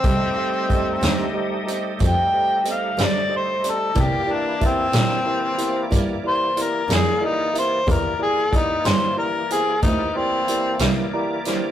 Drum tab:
HH |x-xx-xx-xx-x|x-xx-xx-xx-x|x-xx-xx-xx-x|
SD |---o-----o--|---o-----o--|---o-----o-o|
BD |o-o---o-----|o-o---o-----|o-o---o-----|